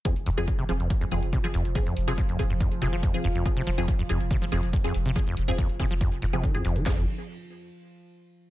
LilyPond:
<<
  \new Staff \with { instrumentName = "Synth stab" } { \time 4/4 \key f \minor \tempo 4 = 141 <f c' aes'>16 r8 <f c' aes'>8 r16 <f c' aes'>16 r8. <f c' aes'>8 r16 <f c' aes'>16 r8 | <f c' aes'>16 r8 <f c' aes'>8 r16 <f c' aes'>16 r8. <f c' aes'>8 r16 <f c' aes'>16 r8 | <f c' aes'>16 r8 <f c' aes'>8 r16 <f c' aes'>16 r8. <f c' aes'>8 r16 <f c' aes'>16 r8 | <f c' aes'>16 r8 <f c' aes'>8 r16 <f c' aes'>16 r4 <f c' aes'>16 r16 <f c' aes'>8 r16 |
<f c' aes'>8 r2. r8 | }
  \new Staff \with { instrumentName = "Synth drone" } { \clef bass \time 4/4 \key f \minor f1~ | f1~ | f1~ | f1 |
r1 | }
  \new Staff \with { instrumentName = "Acid bass" } { \clef bass \time 4/4 \key f \minor f,16 r16 f,16 f,16 r16 c16 f16 f,16 r16 f,16 f,16 r16 c16 f16 f,16 r16 | f,16 f,16 r16 c16 f16 f,16 r16 f,16 f,16 r16 c16 f16 f,16 r16 f,16 f,16 | r16 c16 f16 f,16 r16 f,16 f,16 r16 c16 f16 f,16 r16 f,16 f,16 r16 c16 | f16 f,16 r16 f,16 f,16 r16 c16 f16 f,16 r16 aes,16 c16 ees16 ees,16 f,16 f16 |
f,8 r2. r8 | }
  \new Staff \with { instrumentName = "Sub bass" } { \clef bass \time 4/4 \key f \minor r16 f,,16 f,,16 f,,16 r16 f,,16 f,,16 f,,16 r16 f,,16 f,,16 f,,16 r16 f,,16 f,,16 f,,16 | r16 f,,16 f,,16 f,,16 r16 f,,16 f,,16 f,,16 r16 f,,16 f,,16 f,,16 r16 f,,16 f,,16 f,,16 | r16 f,,16 f,,16 f,,16 r16 f,,16 f,,16 f,,16 r16 f,,16 f,,16 f,,16 r16 f,,16 f,,16 f,,16 | r16 f,,16 f,,16 f,,16 r16 f,,16 f,,16 f,,16 r16 f,,16 f,,16 f,,16 r16 f,,16 f,,16 f,,16 |
f,,8 r2. r8 | }
  \new DrumStaff \with { instrumentName = "Drums" } \drummode { \time 4/4 <hh bd>16 hh16 hho16 hh16 <hh bd>16 hh16 hho16 hh16 <hh bd>16 hh16 hho16 hh16 <hh bd>16 hh16 hho16 hh16 | <hh bd>16 hh16 hho16 hh16 <hh bd>16 hh16 <hho bd>16 hh16 <hh bd>16 hh16 hho16 hh16 <hh bd>16 hh16 hho16 hh16 | <hh bd>16 hh16 hho16 hh16 <hh bd>16 hh16 hho16 hh16 <hh bd>16 hh16 hho16 hh16 <hh bd>16 hh16 hho16 hh16 | <hh bd>16 hh16 hho16 hh16 <hh bd>16 hh16 <hho bd>16 hh16 <hh bd>16 hh16 hho16 hh16 <hh bd>16 hh16 hho16 hh16 |
<cymc bd sn>4 r4 r4 r4 | }
>>